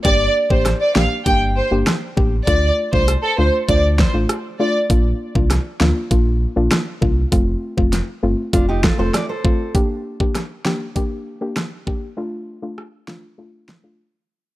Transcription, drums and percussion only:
0.05 kick, closed hi-hat
0.50 kick
0.65 cross-stick, snare, closed hi-hat
0.96 snare
1.26 kick, closed hi-hat
1.87 cross-stick, snare, closed hi-hat
2.17 kick
2.47 kick, closed hi-hat
2.93 kick
3.08 cross-stick, closed hi-hat
3.69 kick, closed hi-hat
3.99 kick, snare
4.29 cross-stick, closed hi-hat
4.90 kick, closed hi-hat
5.35 kick
5.50 cross-stick, snare, closed hi-hat
5.80 snare
6.11 kick, closed hi-hat
6.71 cross-stick, snare, closed hi-hat
7.02 kick
7.32 kick, closed hi-hat
7.78 kick
7.93 snare, closed hi-hat
8.53 kick, closed hi-hat
8.84 kick, snare
9.14 cross-stick, snare, closed hi-hat
9.45 kick
9.75 kick, closed hi-hat
10.20 kick
10.35 cross-stick, snare, closed hi-hat
10.65 snare
10.96 kick, closed hi-hat
11.56 cross-stick, snare, closed hi-hat
11.87 kick
12.78 cross-stick
13.08 snare
13.69 snare

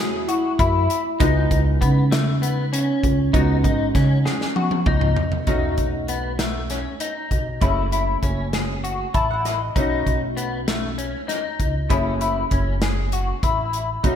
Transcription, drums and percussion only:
0.29 closed hi-hat
0.59 kick, closed hi-hat
0.90 closed hi-hat
1.20 kick, closed hi-hat
1.51 kick, closed hi-hat
1.82 kick, closed hi-hat
2.12 snare, closed hi-hat
2.43 closed hi-hat
2.74 closed hi-hat
3.03 kick, closed hi-hat
3.34 kick, closed hi-hat
3.64 kick, closed hi-hat
3.95 kick, snare, closed hi-hat
4.26 snare
4.41 snare
4.56 high tom
4.71 high tom
4.86 kick, mid tom
5.01 mid tom
5.16 floor tom
5.32 floor tom
5.47 kick, closed hi-hat
5.78 kick, closed hi-hat
6.08 closed hi-hat
6.39 snare, closed hi-hat
6.70 snare, closed hi-hat
7.00 closed hi-hat
7.31 kick, closed hi-hat
7.62 kick, closed hi-hat
7.92 closed hi-hat
8.23 kick, closed hi-hat
8.53 snare, closed hi-hat
8.84 closed hi-hat
9.14 kick, closed hi-hat
9.45 snare, closed hi-hat
9.76 kick, closed hi-hat
10.07 kick, closed hi-hat
10.37 closed hi-hat
10.68 snare, closed hi-hat
10.99 closed hi-hat
11.29 snare, closed hi-hat
11.60 kick, closed hi-hat
11.90 kick, closed hi-hat
12.21 closed hi-hat
12.51 kick, closed hi-hat
12.82 snare, closed hi-hat
13.12 closed hi-hat
13.43 kick, closed hi-hat
13.73 closed hi-hat
14.04 kick, closed hi-hat

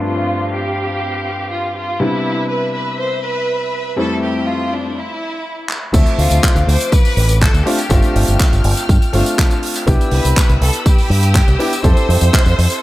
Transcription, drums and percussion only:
5.69 clap
5.94 kick, closed hi-hat, crash, tambourine
6.06 closed hi-hat, tambourine
6.19 open hi-hat
6.31 closed hi-hat, tambourine
6.43 kick, clap, closed hi-hat, tambourine
6.56 closed hi-hat, tambourine
6.69 open hi-hat
6.80 closed hi-hat, tambourine
6.92 kick, closed hi-hat, tambourine
7.05 open hi-hat, tambourine
7.17 open hi-hat
7.29 closed hi-hat, tambourine
7.41 kick, clap, closed hi-hat, tambourine
7.54 closed hi-hat, tambourine
7.67 open hi-hat
7.78 closed hi-hat, tambourine
7.90 kick, closed hi-hat, tambourine
8.02 closed hi-hat, tambourine
8.16 open hi-hat
8.27 closed hi-hat, tambourine
8.39 kick, clap, closed hi-hat, tambourine
8.53 closed hi-hat, tambourine
8.64 open hi-hat
8.77 closed hi-hat, tambourine
8.89 kick, closed hi-hat, tambourine
9.02 closed hi-hat, tambourine
9.13 open hi-hat
9.26 closed hi-hat, tambourine
9.38 kick, clap, closed hi-hat, tambourine
9.50 closed hi-hat, tambourine
9.63 open hi-hat
9.76 closed hi-hat, tambourine
9.87 kick, closed hi-hat, tambourine
10.01 closed hi-hat, tambourine
10.11 open hi-hat
10.25 closed hi-hat, tambourine
10.37 kick, clap, closed hi-hat, tambourine
10.49 closed hi-hat, tambourine
10.62 open hi-hat
10.73 closed hi-hat, tambourine
10.86 kick, closed hi-hat, tambourine
10.98 open hi-hat, tambourine
11.11 open hi-hat
11.23 closed hi-hat, tambourine
11.35 kick, clap, closed hi-hat, tambourine
11.48 closed hi-hat, tambourine
11.60 open hi-hat
11.73 closed hi-hat, tambourine
11.84 kick, closed hi-hat, tambourine
11.97 closed hi-hat, tambourine
12.10 open hi-hat
12.21 closed hi-hat, tambourine
12.33 kick, clap, closed hi-hat, tambourine
12.46 closed hi-hat, tambourine
12.59 open hi-hat
12.70 closed hi-hat, tambourine

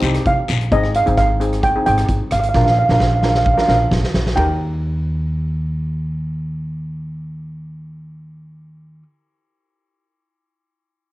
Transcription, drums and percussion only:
0.02 closed hi-hat, short guiro
0.14 cross-stick, closed hi-hat
0.25 kick, closed hi-hat
0.48 cross-stick, closed hi-hat, short guiro
0.61 closed hi-hat
0.72 kick, closed hi-hat
0.84 cross-stick
0.94 closed hi-hat
1.07 closed hi-hat
1.18 kick, cross-stick, closed hi-hat
1.41 closed hi-hat
1.53 cross-stick, closed hi-hat
1.63 kick, closed hi-hat
1.86 closed hi-hat
1.98 cross-stick, closed hi-hat
2.09 kick, closed hi-hat
2.31 cross-stick, closed hi-hat
2.43 closed hi-hat
2.54 kick, snare
2.67 snare
2.89 snare
3.00 kick, snare
3.23 snare
3.35 snare
3.46 kick
3.58 snare
3.69 snare
3.91 kick, snare
4.04 snare
4.14 snare
4.26 snare
4.37 kick, ride

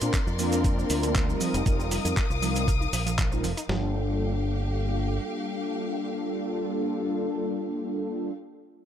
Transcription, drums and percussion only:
0.01 closed hi-hat, maracas, shaker
0.14 kick, clap, closed hi-hat, shaker, maracas
0.27 maracas
0.39 open hi-hat, shaker
0.52 closed hi-hat, maracas, shaker
0.64 kick, closed hi-hat, maracas, shaker
0.79 maracas
0.90 open hi-hat, shaker
1.03 closed hi-hat, maracas, shaker
1.15 kick, clap, closed hi-hat, shaker, maracas
1.30 maracas
1.41 open hi-hat, shaker
1.54 closed hi-hat, shaker, maracas
1.66 kick, closed hi-hat, shaker, maracas
1.80 maracas
1.91 open hi-hat, shaker
2.05 closed hi-hat, shaker, maracas
2.17 kick, clap, closed hi-hat, maracas, shaker
2.31 maracas
2.43 open hi-hat, shaker
2.55 closed hi-hat, maracas, shaker
2.68 kick, closed hi-hat, shaker, maracas
2.82 maracas
2.93 open hi-hat, shaker
3.07 closed hi-hat, shaker, maracas
3.18 kick, clap, closed hi-hat, maracas, shaker
3.32 maracas
3.44 open hi-hat, shaker
3.58 closed hi-hat, shaker, maracas
3.69 snare

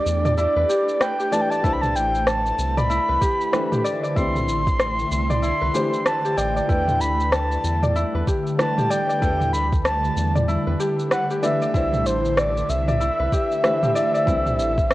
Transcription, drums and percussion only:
0.06 shaker
0.25 mid tom, shaker
0.38 shaker
0.70 shaker
0.89 shaker
1.01 cross-stick, shaker
1.20 shaker
1.33 shaker
1.52 shaker
1.64 kick, shaker
1.83 mid tom, shaker
1.96 shaker
2.15 shaker
2.27 cross-stick, shaker
2.46 shaker
2.59 shaker
2.77 mid tom, shaker
2.91 shaker
3.22 kick, shaker
3.41 shaker
3.53 cross-stick, shaker
3.72 mid tom, shaker
3.85 shaker
4.04 shaker
4.16 kick, shaker
4.35 mid tom, shaker
4.49 shaker
4.67 kick, shaker
4.80 cross-stick, shaker
4.99 shaker
5.12 shaker
5.30 mid tom, shaker
5.43 shaker
5.75 shaker
5.94 shaker
6.06 cross-stick, shaker
6.25 shaker
6.38 shaker
6.57 shaker
6.69 kick, shaker
6.88 mid tom, shaker
7.01 shaker
7.20 shaker
7.32 cross-stick, shaker
7.52 shaker
7.64 shaker
7.83 mid tom, shaker
7.96 shaker
8.27 kick, shaker
8.47 shaker
8.59 cross-stick, shaker
8.78 mid tom, shaker
8.91 shaker
9.10 shaker
9.22 kick, shaker
9.41 mid tom, shaker
9.54 shaker
9.72 kick, shaker
9.85 cross-stick, shaker
10.05 shaker
10.17 shaker
10.35 mid tom, shaker
10.49 shaker
10.80 shaker
10.99 shaker
11.11 cross-stick, shaker
11.31 shaker
11.43 shaker
11.62 shaker
11.74 kick, shaker
11.93 mid tom, shaker
12.06 shaker
12.25 shaker
12.37 cross-stick, shaker
12.57 shaker
12.70 shaker
12.88 mid tom, shaker
13.01 shaker
13.32 kick, shaker
13.52 shaker
13.64 cross-stick, shaker
13.83 mid tom, shaker
13.96 shaker
14.15 shaker
14.27 kick, shaker
14.46 mid tom, shaker
14.59 shaker
14.78 kick, shaker
14.91 cross-stick, shaker

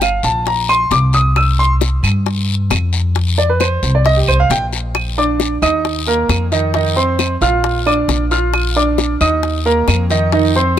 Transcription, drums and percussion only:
0.01 high bongo, short guiro, claves
0.23 high bongo, short guiro
0.46 high bongo, long guiro
0.69 claves
0.91 high bongo, low bongo, short guiro
1.13 high bongo, short guiro
1.36 high bongo, long guiro, claves
1.81 high bongo, short guiro
2.04 short guiro, claves
2.26 high bongo, long guiro
2.70 high bongo, low bongo, short guiro, claves
2.93 short guiro
3.15 high bongo, long guiro
3.38 high bongo
3.60 high bongo, short guiro, claves
3.83 high bongo, short guiro
4.05 high bongo, long guiro
4.28 claves
4.50 high bongo, low bongo, short guiro
4.73 high bongo, short guiro
4.95 high bongo, long guiro, claves
5.40 high bongo, short guiro
5.62 high bongo, short guiro, claves
5.85 high bongo, long guiro
6.07 high bongo
6.29 high bongo, low bongo, short guiro, claves
6.52 high bongo, short guiro
6.74 high bongo, long guiro
6.97 high bongo
7.19 high bongo, short guiro, claves
7.42 short guiro
7.64 high bongo, long guiro
7.86 high bongo, claves
8.09 high bongo, low bongo, short guiro
8.31 high bongo, short guiro
8.54 high bongo, long guiro, claves
8.98 high bongo, short guiro
9.21 high bongo, short guiro, claves
9.43 high bongo, long guiro
9.66 high bongo
9.88 high bongo, low bongo, short guiro, claves
10.10 high bongo, short guiro
10.32 high bongo, long guiro
10.55 high bongo

